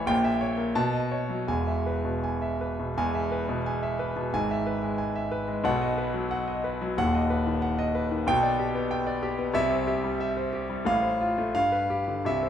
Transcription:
Already playing: A1 E3 E5
0.06 A#1 A#2 G5
0.24 E5
0.41 C#5
0.58 A#3
0.75 B2 A5
0.93 D#5
1.11 C#5
1.29 F#3
1.47 E1 E2 G#5
1.67 E5
1.86 B4
2.05 B2
2.24 G#5
2.42 E5
2.61 B4
2.79 B2
2.97 E1 E2 G#5
3.15 E5
3.32 B4
3.49 B2
3.66 G#5
3.83 E5
3.99 B4
4.16 B2
4.33 G#1 G#2 G#5
4.51 E5
4.67 B4
4.82 G#3
4.98 G#5
5.16 E5
5.32 B4
5.48 G#3
5.64 B1 B2 F#5
5.82 D#5
5.98 B4
6.14 F#3
6.31 F#5
6.48 D#5
6.64 B4
6.82 F#3
6.97 D#1 D#2 F#5
7.15 D#5
7.30 B4
7.47 D#3
7.62 F#5
7.79 D#5
7.95 B4
8.11 D#3
8.27 B1 B2 G5
8.43 D5
8.59 G4
8.75 B3
8.91 G5
9.07 D5
9.23 G4
9.38 B3
9.54 C2 C3 E5
9.71 C5
9.87 G4
10.04 G3
10.20 E5
10.37 C5
10.53 G4
10.70 G3
10.85 A1 A2 F5
11.03 C5
11.21 F4
11.38 A3
11.55 G2 F5
11.72 B4
11.90 G4
12.08 D3
12.25 C2 C3 E5
12.43 C5

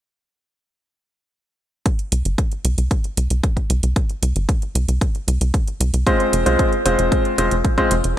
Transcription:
1.86 kick, closed hi-hat
1.99 closed hi-hat
2.12 C2, closed hi-hat
2.25 G1, closed hi-hat
2.38 kick, closed hi-hat
2.52 closed hi-hat
2.65 C2, closed hi-hat
2.78 C2, closed hi-hat
2.91 kick, closed hi-hat
3.04 closed hi-hat
3.17 C2, closed hi-hat
3.30 C2, closed hi-hat
3.44 kick, closed hi-hat
3.57 kick, closed hi-hat
3.70 C2, closed hi-hat
3.83 C2, closed hi-hat
3.96 kick, closed hi-hat
4.09 closed hi-hat
4.22 C2, closed hi-hat
4.36 G1, closed hi-hat
4.49 kick, closed hi-hat
4.62 closed hi-hat
4.75 C2, closed hi-hat
4.88 C2, closed hi-hat
5.01 kick, closed hi-hat
5.15 closed hi-hat
5.28 C2, closed hi-hat
5.41 C2, closed hi-hat
5.54 kick, closed hi-hat
5.67 closed hi-hat
5.80 C2, closed hi-hat
5.94 C2, closed hi-hat
6.07 G#3 C4 F4 C5, kick, closed hi-hat
6.20 closed hi-hat
6.33 F1, closed hi-hat
6.46 C2 G#3 C4 F4 C5, closed hi-hat
6.59 kick, closed hi-hat
6.73 closed hi-hat
6.86 F1 G#3 C4 F4 C5, closed hi-hat
6.99 F1, closed hi-hat
7.12 kick, closed hi-hat
7.25 closed hi-hat
7.38 F1 G#3 C4 F4 C5, closed hi-hat
7.51 F1, closed hi-hat
7.65 kick, closed hi-hat
7.78 G#3 C4 F4 C5, kick, closed hi-hat
7.91 F1, closed hi-hat
8.04 F1, closed hi-hat

